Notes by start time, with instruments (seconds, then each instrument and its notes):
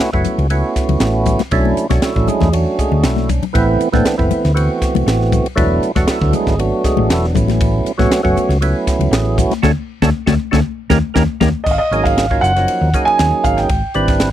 Already playing: tonewheel organ B3 C#4 E4 F#4
0.00 snare, ride
0.13 fingered electric bass F#1, tonewheel organ A3 B3 C#4 E4 F#4, kick
0.24 hi-hat pedal, ride, low conga
0.38 fingered electric bass C#2, ride
0.50 tonewheel organ A3 B3 C#4 E4 F#4, ride
0.76 kick, snare, hi-hat pedal, ride
0.89 fingered electric bass C#2, ride, low conga
1.00 fingered electric bass A1, snare, ride
1.25 kick, hi-hat pedal, ride, low conga
1.39 snare, ride, high conga
1.51 fingered electric bass B1, tonewheel organ F#3 A3 C#4 D4 E4, kick, ride
1.65 high conga
1.77 muted fingered electric bass stroke, hi-hat pedal, ride
1.89 fingered electric bass B1, tonewheel organ F#3 A3 C#4 D4 F#4, kick, snare, ride, high conga
2.02 tonewheel organ A3 E4 F#4 A4, muted fingered electric bass stroke, snare, ride
2.14 fingered electric bass A1, tonewheel organ F#3 A3 C#4 D4 E4, kick
2.28 tonewheel organ G#3 G#4, hi-hat pedal, ride, low conga
2.41 fingered electric bass E2, kick, snare, high conga
2.52 tonewheel organ F#3 A3 C#4 D4 F#4, ride
2.79 tonewheel organ G#3 G#4, kick, hi-hat pedal, ride
2.92 fingered electric bass D2, high conga
3.04 fingered electric bass B1, tonewheel organ A3 E4 F#4 A4, snare, ride, high conga
3.16 snare, high conga
3.29 kick, hi-hat pedal, ride, low conga
3.43 muted fingered electric bass stroke, ride, low conga
3.53 fingered electric bass A1, tonewheel organ E3 A3 B3 C4 E4, kick, ride
3.81 hi-hat pedal, ride
3.92 fingered electric bass A1, tonewheel organ E3 A3 B3 C4 D4, kick, snare, high conga
4.05 muted fingered electric bass stroke, snare, ride
4.18 fingered electric bass F#1, tonewheel organ E3 A3 B3 C4 E4, kick
4.31 hi-hat pedal, ride, low conga
4.45 fingered electric bass D2, snare, ride
4.54 tonewheel organ E3 A3 B3 C4 F#4, ride
4.82 kick, snare, hi-hat pedal, ride
4.95 fingered electric bass C2, ride, high conga, low conga
5.06 fingered electric bass A1, snare, ride
5.21 snare
5.32 kick, hi-hat pedal, ride, low conga
5.45 muted fingered electric bass stroke, ride
5.56 fingered electric bass E1, tonewheel organ F#3 A3 B3 D4 E4, kick, ride
5.83 hi-hat pedal, ride
5.95 fingered electric bass E1, tonewheel organ F#3 A3 B3 D4 F#4, kick, snare, ride, high conga
6.08 tonewheel organ A3 E4 F#4 A4, muted fingered electric bass stroke, snare, ride
6.21 fingered electric bass D2, tonewheel organ F#3 A3 B3 D4 E4, kick
6.33 tonewheel organ G#3 G#4, hi-hat pedal, ride, low conga
6.46 fingered electric bass G#1, kick, snare
6.59 tonewheel organ F#3 A3 B3 D4 F#4, ride
6.84 tonewheel organ G#3 G#4, kick, snare, hi-hat pedal, ride
6.97 fingered electric bass A1, high conga, low conga
7.09 fingered electric bass E1, tonewheel organ A3 E4 F#4 A4, snare, ride
7.24 snare
7.34 fingered electric bass A1, tonewheel organ F#3 A3 B3 C#4 E4, kick, hi-hat pedal, ride, low conga
7.48 snare, ride, high conga
7.61 kick, ride
7.85 muted fingered electric bass stroke, hi-hat pedal, ride
7.98 fingered electric bass A1, tonewheel organ F#3 A3 B3 C#4 F#4, kick, snare, high conga
8.12 snare, ride
8.23 fingered electric bass F#1, tonewheel organ F#3 A3 B3 C#4 F#4, kick
8.37 hi-hat pedal, ride, low conga
8.49 fingered electric bass C#2, snare, ride
8.61 tonewheel organ F#3 A3 B3 C#4 E4, ride
8.87 kick, snare, hi-hat pedal, ride
8.99 fingered electric bass C#2, ride, low conga
9.11 fingered electric bass A1, tonewheel organ G#4, snare, ride
9.38 tonewheel organ F#4, kick, hi-hat pedal, ride, low conga
9.50 muted fingered electric bass stroke, snare, ride, high conga
9.62 fingered electric bass D2, tonewheel organ A3 C#4 D4 F#4 A4, kick, snare, high conga
10.02 fingered electric bass D2, tonewheel organ A3 C#4 D4 F#4 A4, kick, snare, high conga
10.26 fingered electric bass D2, tonewheel organ A3 C#4 D4 F#4 A4, kick, snare, high conga
10.51 fingered electric bass D2, tonewheel organ A3 C#4 D4 F#4 A4, kick, snare, high conga
10.90 fingered electric bass D#2, tonewheel organ A#3 C#4 D#4 G4 A#4, kick, snare, high conga
11.14 fingered electric bass D#2, tonewheel organ A#3 C#4 D#4 G4 A#4, kick, snare, high conga
11.40 fingered electric bass D#2, tonewheel organ A#3 C#4 D#4 G4 A#4, kick, snare, high conga
11.64 fingered electric bass G#1, grand piano D#5, kick, crash
11.71 grand piano F5
11.78 grand piano D#5
11.91 fingered electric bass G#1, tonewheel organ F#3 A#3 C#4 D#4 G#4, hi-hat pedal, ride
12.04 grand piano F5, kick, ride
12.18 snare, ride
12.30 tonewheel organ F#3 A#3 C#4 D#4 F4, kick
12.41 fingered electric bass F#1, grand piano F#5, hi-hat pedal, ride
12.56 tonewheel organ F3 F#3 A#3 C#4 D#4, snare, ride
12.68 ride
12.81 fingered electric bass D#2
12.94 tonewheel organ F#3 A#3 C#4 D#4 G#4, kick, hi-hat pedal, ride
13.05 grand piano G#5, muted fingered electric bass stroke, ride
13.19 fingered electric bass D#2, snare, ride
13.33 muted fingered electric bass stroke
13.44 fingered electric bass G#1, grand piano F5, kick, hi-hat pedal, ride
13.57 grand piano G5, snare, ride
13.69 fingered electric bass G#1, kick, ride
13.94 fingered electric bass G#1, tonewheel organ G3 C4 D4 E4 B4, hi-hat pedal, ride
14.08 kick, snare, ride
14.20 snare, ride